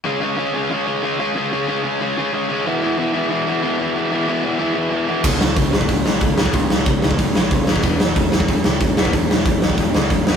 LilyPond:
<<
  \new Staff \with { instrumentName = "Overdriven electric guitar" } { \clef bass \time 4/4 \key des \lydian \tempo 4 = 185 <des aes des' f'>8 <des aes des' f'>8 <des aes des' f'>8 <des aes des' f'>8 <des aes des' f'>8 <des aes des' f'>8 <des aes des' f'>8 <des aes des' f'>8 | <des aes des' f'>8 <des aes des' f'>8 <des aes des' f'>8 <des aes des' f'>8 <des aes des' f'>8 <des aes des' f'>8 <des aes des' f'>8 <des aes des' f'>8 | <e gis b e'>8 <e gis b e'>8 <e gis b e'>8 <e gis b e'>8 <e gis b e'>8 <e gis b e'>8 <e gis b e'>8 <e gis b e'>8 | <e gis b e'>8 <e gis b e'>8 <e gis b e'>8 <e gis b e'>8 <e gis b e'>8 <e gis b e'>8 <e gis b e'>8 <e gis b e'>8 |
<des aes des'>8 <des aes>8 <des aes>8 <des aes>8 <des aes>8 <des aes>8 <des aes>8 <des aes des'>8 | <des aes>8 <des aes>8 <des aes>8 <des aes>8 <des aes>8 <des aes>8 <des aes>8 <des aes des'>8 | <e gis b>8 <e gis>8 <e gis>8 <e gis>8 <e gis>8 <e gis>8 <e gis>8 <e gis b>8 | <e gis>8 <e gis>8 <e gis>8 <e gis>8 <e gis>8 <e gis>8 <e gis>8 <e gis b>8 | }
  \new Staff \with { instrumentName = "Overdriven electric guitar" } { \clef bass \time 4/4 \key des \lydian <des aes des'>8 <des aes des'>8 <des aes des'>8 <des aes des'>8 <des aes des'>8 <des aes des'>8 <des aes des'>8 <des aes des'>8 | <des aes des'>8 <des aes des'>8 <des aes des'>8 <des aes des'>8 <des aes des'>8 <des aes des'>8 <des aes des'>8 <des aes des'>8 | <e, b, e>8 <e, b, e>8 <e, b, e>8 <e, b, e>8 <e, b, e>8 <e, b, e>8 <e, b, e>8 <e, b, e>8 | <e, b, e>8 <e, b, e>8 <e, b, e>8 <e, b, e>8 <e, b, e>8 <e, b, e>8 <e, b, e>8 <e, b, e>8 |
r1 | r1 | r1 | r1 | }
  \new Staff \with { instrumentName = "Picked electric bass" } { \clef bass \time 4/4 \key des \lydian r1 | r1 | r1 | r1 |
des,8 des,8 des,8 des,8 des,8 bes,,8 des,8 des,8 | des,8 des,8 des,8 des,8 des,8 bes,,8 des,8 ees,8 | e,,8 e,,8 e,,8 e,,8 e,,8 des,8 e,,8 e,,8 | e,,8 e,,8 e,,8 e,,8 e,,8 des,8 e,,8 e,,8 | }
  \new DrumStaff \with { instrumentName = "Drums" } \drummode { \time 4/4 r4 r4 r4 r4 | r4 r4 r4 r4 | r4 r4 r4 r4 | r4 r4 r4 r4 |
<cymc bd>8 sn8 <hho bd>8 sn16 bd16 <hho bd>8 sn8 <hho bd>8 sn16 bd16 | <hho bd>8 sn8 <hho bd>8 sn16 bd16 <hho bd>8 sn8 <hho bd>8 sn16 bd16 | <hho bd>8 sn8 <hho bd>8 sn16 bd16 <hho bd>8 sn8 <hho bd>8 sn16 bd16 | <hho bd>8 sn8 <hho bd>8 sn16 bd16 <hho bd>8 sn8 <hho bd>8 sn8 | }
>>